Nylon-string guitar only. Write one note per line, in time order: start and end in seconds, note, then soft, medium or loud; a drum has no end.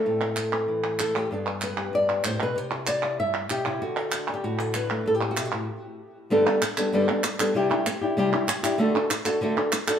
0.00 0.99 A4 medium
0.06 1.29 A2 medium
0.06 1.14 A3 soft
0.06 0.21 C4 soft
0.22 0.37 C4 soft
0.38 0.52 C4 soft
0.53 0.83 C4 soft
0.68 1.29 E3 medium
0.85 1.29 C4 soft
1.00 1.16 A4 medium
1.16 1.29 A3 medium
1.16 1.31 G4 medium
1.31 1.92 G2 medium
1.31 2.55 B3 soft
1.31 2.58 D4 soft
1.31 1.78 A4 medium
1.63 1.94 B4 medium
1.78 2.08 G4 soft
1.93 2.24 G2 medium
1.93 2.25 D5 medium
2.10 2.58 G4 soft
2.24 2.40 A2 medium
2.24 2.41 C5 medium
2.40 2.56 B2 medium
2.40 2.57 B4 medium
2.56 3.18 C3 medium
2.56 3.19 C5 medium
2.72 3.03 E4 soft
2.88 3.19 D5 medium
3.04 3.65 E4 soft
3.19 3.50 G2 medium
3.19 3.50 E5 loud
3.50 3.66 B2 medium
3.50 3.81 G4 medium
3.66 3.81 C3 medium
3.66 3.82 E4 medium
3.82 5.05 D3 medium
3.82 4.28 F#4 medium
3.97 4.33 A4 medium
4.13 4.28 D4 soft
4.29 5.05 D4 soft
4.34 4.44 G4 medium
4.44 5.04 A2 medium
4.44 4.83 F#4 medium
4.52 4.60 G4 medium
4.60 4.75 A4 medium
4.76 5.07 B4 medium
4.91 5.05 A3 medium
5.06 5.37 A2 medium
5.06 5.15 A4 medium
5.15 5.51 G4 medium
5.23 5.67 C4 soft
5.31 5.38 F#4 medium
5.38 5.53 B2 medium
5.38 5.45 E4 medium
5.45 5.69 F#4 medium
5.52 5.69 A2 medium
5.52 6.31 G4 medium
6.30 6.46 G2 medium
6.30 6.46 D3 medium
6.30 6.46 G3 medium
6.30 6.46 B3 medium
6.30 6.45 D4 medium
6.30 6.45 A4 medium
6.46 6.61 G3 soft
6.46 6.62 B3 soft
6.46 6.62 D4 soft
6.46 6.61 A4 medium
6.62 muted nylon-string guitar stroke medium
6.78 6.92 G3 soft
6.78 6.93 B3 medium
6.78 6.93 D4 medium
6.78 6.93 A4 medium
6.92 7.08 G2 medium
6.92 7.08 D3 medium
6.92 7.08 G3 medium
6.92 7.08 B3 medium
6.92 7.08 D4 medium
6.92 7.07 A4 medium
7.08 7.23 G3 soft
7.08 7.24 B3 soft
7.08 7.23 D4 soft
7.08 7.23 A4 soft
7.24 muted nylon-string guitar stroke medium
7.39 7.54 G3 soft
7.39 7.55 B3 medium
7.39 7.54 D4 medium
7.39 7.54 A4 medium
7.54 7.70 C3 medium
7.54 7.70 G3 medium
7.54 7.70 D4 medium
7.54 7.70 E4 medium
7.54 7.68 G4 medium
7.70 7.86 D4 soft
7.70 7.86 E4 medium
7.70 7.85 G4 medium
7.86 muted nylon-string guitar stroke medium
8.01 8.17 D4 soft
8.01 8.17 E4 medium
8.01 8.17 G4 medium
8.17 8.32 C3 medium
8.17 8.32 G3 medium
8.17 8.33 D4 medium
8.17 8.32 E4 medium
8.17 8.31 G4 loud
8.32 8.47 D4 soft
8.32 8.48 E4 medium
8.32 8.48 G4 medium
8.48 muted nylon-string guitar stroke medium
8.63 8.78 D4 soft
8.63 8.79 E4 medium
8.63 8.79 G4 medium
8.78 8.94 D3 medium
8.78 8.94 A3 medium
8.78 8.94 D4 medium
8.78 8.94 F#4 medium
8.78 8.93 A4 medium
8.94 9.10 D4 soft
8.94 9.10 F#4 soft
8.94 9.10 A4 medium
9.10 muted nylon-string guitar stroke medium
9.25 9.41 D4 soft
9.25 9.41 F#4 medium
9.25 9.41 A4 medium
9.41 9.56 D3 medium
9.41 9.57 A3 medium
9.41 9.57 D4 medium
9.41 9.57 F#4 medium
9.41 9.55 A4 medium
9.56 9.72 D4 soft
9.56 9.72 F#4 medium
9.56 9.72 A4 soft
9.73 muted nylon-string guitar stroke medium
9.87 9.99 D4 soft
9.87 9.99 F#4 soft
9.87 9.99 A4 medium